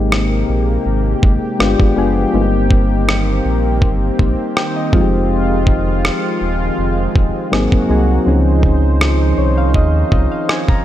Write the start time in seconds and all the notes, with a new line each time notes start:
Already playing: G#1 C3 G#3 A#3 C4 D#4 G4
0.12 cross-stick
0.49 A#1
0.86 G#1
1.23 G#1, kick
1.59 G1 F3 G#3 B3 D4 F4 G4, cross-stick
1.80 G#1, kick
1.96 F#1 G#3 B3 D4 F4 G#4
2.33 G1 D#3 G3 A#3 C4 D#4 F4
2.42 G4
2.71 kick
3.09 cross-stick
3.45 A#1
3.82 G1, kick
4.19 A#1, kick
4.57 G5, cross-stick
4.76 D#5
4.92 F1 F3 G#3 C4 D#4 F4, kick
5.01 G4
5.67 kick
6.05 cross-stick
6.41 D#1
6.78 F1
7.16 D#1, kick
7.51 G#1 C3 F#3 A#3 C4 D#4 F#4 G#4, cross-stick
7.72 F#1, kick
7.88 C2 F#3 A#3 C4 D#4 G#4
8.26 C#2 D#3 F3 C4 C#4 D#4 G#4 C5
8.63 kick
9.01 cross-stick
9.38 C2 C#5
9.58 F5
9.74 D#2 D#5, kick
10.12 C2 D#5, kick
10.32 F5
10.49 G#5, cross-stick
10.69 A#5, kick